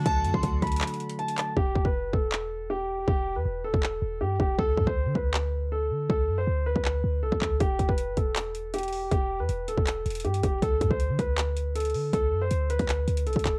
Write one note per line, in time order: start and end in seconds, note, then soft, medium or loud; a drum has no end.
0.00 1.50 D3 medium
0.00 1.51 F#3 medium
0.00 1.52 A3 medium
0.00 1.54 D4 medium
0.00 1.53 F#4 medium
0.00 1.54 F#4 medium
0.00 1.54 A4 medium
0.00 1.55 A4 medium
0.00 1.54 F#5 medium
0.06 0.26 D2 loud
0.06 1.53 A5 loud
0.06 0.32 A5 medium
0.06 kick loud
0.06 closed hi-hat medium
0.25 0.34 F#2 loud
0.25 closed hi-hat medium
0.34 0.43 D2 loud
0.34 0.61 C6 medium
0.34 kick loud
0.43 0.62 D2 loud
0.43 kick medium
0.43 closed hi-hat medium
0.62 0.81 D2 loud
0.62 1.16 B5 medium
0.62 kick medium
0.62 closed hi-hat soft
0.67 closed hi-hat medium
0.72 closed hi-hat medium
0.76 closed hi-hat medium
0.81 clap loud
0.81 closed hi-hat medium
0.87 closed hi-hat medium
0.94 closed hi-hat soft
1.00 closed hi-hat soft
1.10 closed hi-hat medium
1.19 1.33 A5 medium
1.19 closed hi-hat soft
1.28 closed hi-hat medium
1.38 1.52 A5 medium
1.38 clap medium
1.38 closed hi-hat medium
1.57 1.75 E1 loud
1.57 1.83 G4 medium
1.57 kick loud
1.76 1.85 E1 loud
1.76 kick medium
1.85 2.05 E1 loud
1.85 2.12 B4 medium
1.85 kick medium
2.04 2.13 F#1 loud
2.13 3.04 E1 loud
2.13 2.67 A4 medium
2.13 kick medium
2.32 clap loud
2.70 3.05 G4 medium
3.08 3.37 E1 loud
3.08 3.34 G4 loud
3.08 kick loud
3.36 3.45 E2 loud
3.36 3.63 B4 medium
3.45 3.66 E1 loud
3.64 3.73 D1 loud
3.64 4.18 A4 medium
3.74 4.01 E1 loud
3.74 kick loud
3.83 clap loud
4.02 4.22 E1 loud
4.21 4.39 G2 loud
4.21 4.35 G4 medium
4.40 4.58 E1 loud
4.40 4.54 G4 medium
4.40 kick medium
4.59 4.77 D2 loud
4.59 4.85 A4 loud
4.59 kick loud
4.77 4.86 F#2 loud
4.77 kick medium
4.87 5.07 D2 loud
4.87 5.13 C5 medium
4.87 kick loud
5.06 5.15 D3 loud
5.15 5.92 D2 loud
5.15 5.68 B4 medium
5.15 kick medium
5.34 clap loud
5.72 6.07 A4 medium
5.91 6.09 D3 loud
6.10 6.30 D2 loud
6.10 6.36 A4 medium
6.10 kick loud
6.28 6.46 F#2 loud
6.38 6.64 C5 medium
6.47 6.74 D2 loud
6.66 7.19 B4 medium
6.76 7.03 D2 loud
6.76 kick loud
6.85 clap loud
7.04 7.24 D2 loud
7.23 7.31 C2 loud
7.23 7.37 A4 medium
7.32 7.41 D2 loud
7.32 kick loud
7.42 7.60 D2 loud
7.42 7.56 A4 medium
7.42 kick medium
7.42 clap loud
7.60 7.79 E1 loud
7.60 7.87 G4 medium
7.60 kick loud
7.60 closed hi-hat medium
7.79 7.88 E1 loud
7.79 kick medium
7.79 closed hi-hat medium
7.89 8.09 E1 loud
7.89 8.15 B4 medium
7.89 kick medium
7.98 closed hi-hat medium
8.08 8.17 F#1 loud
8.17 9.08 E1 loud
8.17 8.70 A4 medium
8.17 kick medium
8.17 closed hi-hat medium
8.36 clap loud
8.36 closed hi-hat medium
8.55 closed hi-hat medium
8.74 9.09 G4 medium
8.74 closed hi-hat medium
8.78 closed hi-hat medium
8.83 closed hi-hat soft
8.88 closed hi-hat soft
8.93 open hi-hat medium
9.11 9.41 E1 loud
9.11 9.38 G4 loud
9.11 kick loud
9.11 closed hi-hat medium
9.40 9.49 E2 loud
9.40 9.66 B4 medium
9.49 9.69 E1 loud
9.49 closed hi-hat medium
9.68 9.77 D1 loud
9.68 10.21 A4 medium
9.68 closed hi-hat medium
9.78 10.05 E1 loud
9.78 kick loud
9.87 clap loud
9.87 closed hi-hat medium
10.06 10.26 E1 loud
10.06 closed hi-hat soft
10.10 closed hi-hat medium
10.15 closed hi-hat medium
10.20 closed hi-hat medium
10.25 10.43 G2 loud
10.25 10.39 G4 medium
10.25 closed hi-hat soft
10.34 closed hi-hat medium
10.43 10.62 E1 loud
10.43 10.58 G4 medium
10.43 kick medium
10.43 closed hi-hat medium
10.62 10.80 D2 loud
10.62 10.89 A4 loud
10.62 kick loud
10.62 closed hi-hat medium
10.81 10.90 F#2 loud
10.81 kick medium
10.81 closed hi-hat medium
10.91 11.11 D2 loud
10.91 11.17 C5 medium
10.91 kick medium
11.00 closed hi-hat medium
11.10 11.19 D3 loud
11.19 11.96 D2 loud
11.19 11.72 B4 medium
11.19 kick medium
11.19 closed hi-hat medium
11.38 clap loud
11.38 closed hi-hat medium
11.57 closed hi-hat medium
11.76 12.11 A4 medium
11.76 closed hi-hat medium
11.80 closed hi-hat medium
11.85 closed hi-hat soft
11.90 closed hi-hat soft
11.94 12.12 D3 loud
11.94 open hi-hat medium
12.13 12.34 D2 loud
12.13 12.40 A4 loud
12.13 kick loud
12.13 closed hi-hat medium
12.32 12.50 F#2 medium
12.41 12.68 C5 medium
12.51 12.78 D2 loud
12.51 closed hi-hat medium
12.70 13.23 B4 medium
12.70 closed hi-hat medium
12.79 13.07 D2 loud
12.79 kick loud
12.79 closed hi-hat medium
12.89 clap loud
12.89 closed hi-hat medium
13.08 13.28 D2 loud
13.08 closed hi-hat medium
13.17 closed hi-hat medium
13.26 13.35 C2 loud
13.26 13.41 A4 medium
13.26 closed hi-hat soft
13.33 13.45 D2 loud
13.33 kick loud
13.33 closed hi-hat medium
13.39 closed hi-hat medium
13.45 13.59 E1 loud
13.45 13.59 A4 medium
13.45 kick medium
13.45 clap loud
13.45 closed hi-hat medium